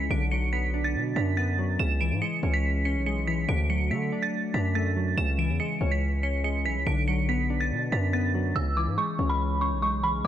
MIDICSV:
0, 0, Header, 1, 4, 480
1, 0, Start_track
1, 0, Tempo, 422535
1, 119, Time_signature, 4, 2, 24, 8
1, 11669, End_track
2, 0, Start_track
2, 0, Title_t, "Synth bell"
2, 0, Program_c, 0, 98
2, 120, Note_on_c, 0, 98, 93
2, 315, Note_off_c, 0, 98, 0
2, 358, Note_on_c, 0, 97, 82
2, 553, Note_off_c, 0, 97, 0
2, 598, Note_on_c, 0, 95, 84
2, 937, Note_off_c, 0, 95, 0
2, 959, Note_on_c, 0, 93, 84
2, 1297, Note_off_c, 0, 93, 0
2, 1319, Note_on_c, 0, 95, 84
2, 1514, Note_off_c, 0, 95, 0
2, 1558, Note_on_c, 0, 93, 90
2, 2010, Note_off_c, 0, 93, 0
2, 2038, Note_on_c, 0, 100, 104
2, 2233, Note_off_c, 0, 100, 0
2, 2280, Note_on_c, 0, 98, 82
2, 2474, Note_off_c, 0, 98, 0
2, 2519, Note_on_c, 0, 97, 91
2, 2857, Note_off_c, 0, 97, 0
2, 2880, Note_on_c, 0, 95, 93
2, 3218, Note_off_c, 0, 95, 0
2, 3240, Note_on_c, 0, 97, 71
2, 3435, Note_off_c, 0, 97, 0
2, 3481, Note_on_c, 0, 97, 76
2, 3675, Note_off_c, 0, 97, 0
2, 3720, Note_on_c, 0, 95, 86
2, 3915, Note_off_c, 0, 95, 0
2, 3960, Note_on_c, 0, 98, 93
2, 4155, Note_off_c, 0, 98, 0
2, 4201, Note_on_c, 0, 97, 81
2, 4395, Note_off_c, 0, 97, 0
2, 4442, Note_on_c, 0, 95, 74
2, 4779, Note_off_c, 0, 95, 0
2, 4799, Note_on_c, 0, 93, 90
2, 5138, Note_off_c, 0, 93, 0
2, 5158, Note_on_c, 0, 95, 87
2, 5354, Note_off_c, 0, 95, 0
2, 5399, Note_on_c, 0, 93, 91
2, 5851, Note_off_c, 0, 93, 0
2, 5879, Note_on_c, 0, 100, 112
2, 6074, Note_off_c, 0, 100, 0
2, 6121, Note_on_c, 0, 98, 86
2, 6315, Note_off_c, 0, 98, 0
2, 6359, Note_on_c, 0, 97, 82
2, 6698, Note_off_c, 0, 97, 0
2, 6719, Note_on_c, 0, 95, 85
2, 7058, Note_off_c, 0, 95, 0
2, 7079, Note_on_c, 0, 97, 77
2, 7274, Note_off_c, 0, 97, 0
2, 7320, Note_on_c, 0, 97, 81
2, 7515, Note_off_c, 0, 97, 0
2, 7560, Note_on_c, 0, 95, 90
2, 7755, Note_off_c, 0, 95, 0
2, 7799, Note_on_c, 0, 98, 90
2, 7994, Note_off_c, 0, 98, 0
2, 8039, Note_on_c, 0, 97, 83
2, 8234, Note_off_c, 0, 97, 0
2, 8279, Note_on_c, 0, 95, 83
2, 8618, Note_off_c, 0, 95, 0
2, 8639, Note_on_c, 0, 93, 89
2, 8978, Note_off_c, 0, 93, 0
2, 9000, Note_on_c, 0, 95, 86
2, 9194, Note_off_c, 0, 95, 0
2, 9240, Note_on_c, 0, 93, 91
2, 9691, Note_off_c, 0, 93, 0
2, 9720, Note_on_c, 0, 88, 104
2, 9915, Note_off_c, 0, 88, 0
2, 9961, Note_on_c, 0, 86, 77
2, 10155, Note_off_c, 0, 86, 0
2, 10199, Note_on_c, 0, 85, 89
2, 10538, Note_off_c, 0, 85, 0
2, 10559, Note_on_c, 0, 83, 89
2, 10898, Note_off_c, 0, 83, 0
2, 10920, Note_on_c, 0, 85, 71
2, 11115, Note_off_c, 0, 85, 0
2, 11160, Note_on_c, 0, 85, 75
2, 11355, Note_off_c, 0, 85, 0
2, 11400, Note_on_c, 0, 83, 84
2, 11595, Note_off_c, 0, 83, 0
2, 11669, End_track
3, 0, Start_track
3, 0, Title_t, "Synth keys"
3, 0, Program_c, 1, 88
3, 0, Control_c, 1, 64, 127
3, 0, Note_on_c, 1, 49, 94
3, 0, Note_on_c, 1, 52, 89
3, 0, Note_on_c, 1, 56, 92
3, 0, Note_on_c, 1, 61, 89
3, 117, Note_off_c, 1, 52, 0
3, 118, Note_off_c, 1, 56, 0
3, 119, Note_off_c, 1, 61, 0
3, 120, Note_on_c, 1, 50, 111
3, 132, Control_c, 1, 64, 0
3, 141, Note_off_c, 1, 49, 0
3, 331, Control_c, 1, 64, 127
3, 366, Note_on_c, 1, 54, 78
3, 598, Note_on_c, 1, 59, 85
3, 839, Note_on_c, 1, 62, 87
3, 1304, Note_off_c, 1, 62, 0
3, 1318, Note_on_c, 1, 62, 86
3, 1320, Note_off_c, 1, 50, 0
3, 1549, Note_off_c, 1, 59, 0
3, 1562, Note_on_c, 1, 59, 91
3, 1563, Note_off_c, 1, 54, 0
3, 1801, Note_on_c, 1, 54, 90
3, 2038, Note_off_c, 1, 62, 0
3, 2039, Note_on_c, 1, 49, 92
3, 2040, Note_off_c, 1, 54, 0
3, 2041, Note_off_c, 1, 59, 0
3, 2054, Control_c, 1, 64, 0
3, 2247, Control_c, 1, 64, 127
3, 2282, Note_on_c, 1, 52, 84
3, 2516, Note_on_c, 1, 56, 90
3, 2759, Note_on_c, 1, 61, 88
3, 3230, Note_off_c, 1, 61, 0
3, 3239, Note_off_c, 1, 49, 0
3, 3243, Note_on_c, 1, 61, 86
3, 3469, Note_off_c, 1, 56, 0
3, 3481, Note_off_c, 1, 52, 0
3, 3482, Note_on_c, 1, 56, 95
3, 3720, Note_on_c, 1, 52, 81
3, 3959, Note_on_c, 1, 50, 99
3, 3960, Note_off_c, 1, 52, 0
3, 3961, Note_off_c, 1, 56, 0
3, 3961, Note_off_c, 1, 61, 0
3, 3974, Control_c, 1, 64, 0
3, 4153, Control_c, 1, 64, 127
3, 4202, Note_on_c, 1, 54, 82
3, 4438, Note_on_c, 1, 57, 93
3, 4684, Note_on_c, 1, 62, 85
3, 5146, Note_off_c, 1, 62, 0
3, 5159, Note_off_c, 1, 50, 0
3, 5159, Note_on_c, 1, 62, 89
3, 5382, Note_off_c, 1, 57, 0
3, 5396, Note_on_c, 1, 57, 92
3, 5401, Note_off_c, 1, 54, 0
3, 5639, Note_on_c, 1, 54, 82
3, 5878, Note_off_c, 1, 57, 0
3, 5879, Note_off_c, 1, 54, 0
3, 5879, Note_off_c, 1, 62, 0
3, 5885, Note_on_c, 1, 49, 93
3, 5896, Control_c, 1, 64, 0
3, 6089, Control_c, 1, 64, 127
3, 6114, Note_on_c, 1, 52, 87
3, 6360, Note_on_c, 1, 56, 86
3, 6597, Note_on_c, 1, 61, 94
3, 7065, Note_off_c, 1, 61, 0
3, 7079, Note_on_c, 1, 61, 86
3, 7082, Note_off_c, 1, 49, 0
3, 7303, Note_off_c, 1, 56, 0
3, 7317, Note_off_c, 1, 52, 0
3, 7317, Note_on_c, 1, 56, 95
3, 7555, Note_on_c, 1, 52, 85
3, 7797, Note_off_c, 1, 52, 0
3, 7798, Note_off_c, 1, 56, 0
3, 7799, Note_off_c, 1, 61, 0
3, 7801, Note_on_c, 1, 50, 110
3, 7816, Control_c, 1, 64, 0
3, 8024, Control_c, 1, 64, 127
3, 8048, Note_on_c, 1, 54, 80
3, 8279, Note_on_c, 1, 59, 92
3, 8519, Note_on_c, 1, 62, 86
3, 8985, Note_off_c, 1, 62, 0
3, 8998, Note_on_c, 1, 62, 86
3, 9000, Note_off_c, 1, 50, 0
3, 9230, Note_off_c, 1, 59, 0
3, 9244, Note_off_c, 1, 54, 0
3, 9244, Note_on_c, 1, 59, 92
3, 9482, Note_on_c, 1, 54, 88
3, 9719, Note_off_c, 1, 62, 0
3, 9721, Note_off_c, 1, 54, 0
3, 9721, Note_on_c, 1, 49, 91
3, 9722, Note_off_c, 1, 59, 0
3, 9732, Control_c, 1, 64, 0
3, 9903, Control_c, 1, 64, 127
3, 9962, Note_on_c, 1, 52, 82
3, 10196, Note_on_c, 1, 56, 90
3, 10439, Note_on_c, 1, 61, 86
3, 10908, Note_off_c, 1, 61, 0
3, 10920, Note_off_c, 1, 49, 0
3, 10922, Note_on_c, 1, 61, 80
3, 11147, Note_off_c, 1, 56, 0
3, 11161, Note_off_c, 1, 52, 0
3, 11161, Note_on_c, 1, 56, 93
3, 11398, Note_on_c, 1, 52, 78
3, 11639, Note_off_c, 1, 52, 0
3, 11640, Note_off_c, 1, 56, 0
3, 11641, Note_off_c, 1, 61, 0
3, 11656, Control_c, 1, 64, 0
3, 11669, End_track
4, 0, Start_track
4, 0, Title_t, "808-style bass"
4, 0, Program_c, 2, 38
4, 119, Note_on_c, 2, 35, 105
4, 1080, Note_on_c, 2, 47, 102
4, 1097, Note_off_c, 2, 35, 0
4, 1308, Note_off_c, 2, 47, 0
4, 1320, Note_on_c, 2, 42, 105
4, 2011, Note_off_c, 2, 42, 0
4, 2040, Note_on_c, 2, 37, 106
4, 2401, Note_on_c, 2, 44, 103
4, 2418, Note_off_c, 2, 37, 0
4, 2514, Note_off_c, 2, 44, 0
4, 2761, Note_on_c, 2, 37, 112
4, 3362, Note_on_c, 2, 35, 97
4, 3379, Note_off_c, 2, 37, 0
4, 3931, Note_off_c, 2, 35, 0
4, 3960, Note_on_c, 2, 38, 111
4, 4439, Note_on_c, 2, 50, 101
4, 4456, Note_off_c, 2, 38, 0
4, 4667, Note_off_c, 2, 50, 0
4, 5159, Note_on_c, 2, 42, 106
4, 5850, Note_off_c, 2, 42, 0
4, 5879, Note_on_c, 2, 37, 105
4, 6239, Note_on_c, 2, 40, 106
4, 6256, Note_off_c, 2, 37, 0
4, 6353, Note_off_c, 2, 40, 0
4, 6599, Note_on_c, 2, 37, 108
4, 7559, Note_on_c, 2, 35, 98
4, 7576, Note_off_c, 2, 37, 0
4, 7680, Note_on_c, 2, 37, 104
4, 7697, Note_off_c, 2, 35, 0
4, 7794, Note_off_c, 2, 37, 0
4, 7800, Note_on_c, 2, 35, 109
4, 8760, Note_on_c, 2, 47, 102
4, 8777, Note_off_c, 2, 35, 0
4, 8988, Note_off_c, 2, 47, 0
4, 9000, Note_on_c, 2, 42, 101
4, 9691, Note_off_c, 2, 42, 0
4, 9720, Note_on_c, 2, 37, 107
4, 10080, Note_on_c, 2, 44, 101
4, 10097, Note_off_c, 2, 37, 0
4, 10194, Note_off_c, 2, 44, 0
4, 10439, Note_on_c, 2, 37, 104
4, 11039, Note_on_c, 2, 35, 96
4, 11056, Note_off_c, 2, 37, 0
4, 11609, Note_off_c, 2, 35, 0
4, 11669, End_track
0, 0, End_of_file